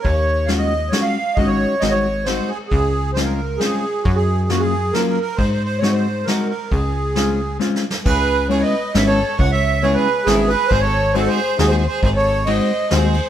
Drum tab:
CC |------------------|------------------|------------------|------------------|
RD |x-----x-----x-----|x-----x-----x-----|x-----x-----x-----|x-----x-----x-----|
SD |------o-----o-----|------o-----o-----|------o-----o-----|------o-----o-----|
BD |o-----------------|o-----------------|o-----------------|o-----------------|

CC |------------------|------------------|x-----------------|------------------|
RD |x-----x-----x-----|x-----x-----------|------x-----x-----|x-----x-----x--x--|
SD |------o-----o-----|------o-----o-o-o-|------------o-----|------------o-----|
BD |o-----------------|o-----------------|o-----------------|o-----------------|

CC |------------------|------------------|
RD |x-----x-----x-----|x-----x-----x--x--|
SD |------------o-----|------------o-----|
BD |o-----------------|o-----------------|